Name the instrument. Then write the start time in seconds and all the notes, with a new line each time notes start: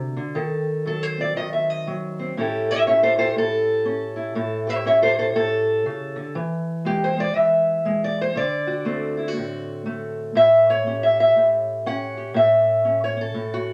steel-string acoustic guitar
Already playing: C3 D3 D4 F#4
0.17 D3
0.35 D#3 A4
0.86 F#3 A4
1.03 C5
1.18 C4 D5
1.36 D#3 D#5
1.53 E5
1.70 D#5
1.87 F#3
2.19 C4
2.37 A2 C#4 E4 G4 A4
2.71 C#5 E5
2.87 C#4 C#5 E5
3.03 A4 C5
3.18 G4 A4 C5
3.36 A2 A4
3.85 C#4
4.16 E4
4.35 A2 A4
4.67 G4 C#5 E5
4.86 C#4 C#5 E5
5.02 A4 C5
5.19 A4 C5
5.35 A2 A4
5.86 C#3
6.16 D3
6.35 E3
6.85 G#3 G4
7.04 C5
7.17 G#3 D5
7.35 E3 E5
7.85 G#3
8.04 D5
8.21 C5
8.35 D3 D5
8.67 F#4
8.85 A3 C4
9.17 E4
9.28 F#4
9.37 A2
9.86 A3
10.35 A2 E5
10.70 C#5
10.87 C#4 G4
11.03 E5
11.20 E5
11.36 A2
11.86 C#4 F#5
12.17 G4
12.34 A2 E5
12.85 C#4
13.04 C#5
13.17 C#4
13.21 A4
13.34 A2
13.54 F#4